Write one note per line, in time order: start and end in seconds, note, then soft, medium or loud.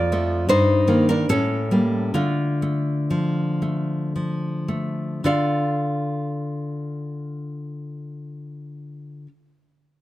0.00 0.48 F2 medium
0.00 0.47 F4 medium
0.00 0.47 D5 loud
0.12 0.46 F3 medium
0.12 0.46 A3 medium
0.49 1.26 G2 medium
0.49 1.05 D#4 medium
0.49 1.06 C5 loud
0.88 1.25 D#3 soft
0.88 1.25 A#3 medium
1.09 1.29 D4 medium
1.09 1.29 A#4 medium
1.29 2.14 A2 medium
1.29 2.14 C#4 medium
1.29 2.14 A4 medium
1.71 2.13 G3 soft
1.71 2.13 A#3 soft
2.14 5.20 D3 soft
2.14 2.61 A3 soft
2.14 4.09 F4 medium
2.62 3.61 A3 soft
3.10 4.14 F3 soft
3.62 4.67 A3 soft
4.16 5.25 F3 soft
4.68 5.25 A3 soft
5.24 9.26 D3 medium
5.24 9.27 F4 soft
5.24 9.27 A4 soft
5.24 9.27 D5 soft
5.24 9.28 F5 soft